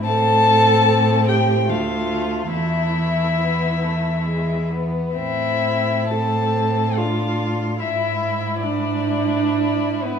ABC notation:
X:1
M:3/4
L:1/16
Q:1/4=71
K:Am
V:1 name="Violin"
a6 g2 f4 | e8- e2 z2 | e4 a4 f4 | e4 d6- d B |]
V:2 name="Viola"
A6 G2 F4 | E8- E2 z2 | E4 A4 F4 | E4 D6- D B, |]
V:3 name="Violin"
C8 A,4 | A,4 B,2 A,2 ^G,2 B,2 | C4 C4 D4 | E4 E8 |]
V:4 name="Cello" clef=bass
A,,8 D,,4 | E,,8- E,,3 z | A,,12 | ^G,,12 |]